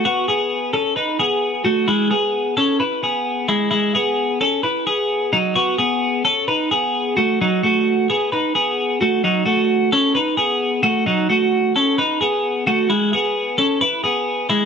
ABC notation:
X:1
M:4/4
L:1/8
Q:1/4=131
K:Bmix
V:1 name="Clean electric guitar"
[B,F] [B,G]2 [CA] [DB] [B,G]2 [A,F] | [G,E] [B,G]2 [CA] [EB] [B,G]2 [G,E] | [G,E] [B,G]2 [CA] [EB] [B,G]2 [F,D] | [B,F] [B,G]2 [CA] [DB] [B,G]2 [A,F] |
[F,D] [A,F]2 [B,G] [DB] [B,G]2 [A,F] | [F,D] [A,F]2 [CA] [DB] [B,G]2 [A,F] | [F,D] [A,F]2 [CA] [DB] [B,G]2 [A,F] | [G,E] [B,G]2 [CA] [EB] [B,G]2 [G,E] |]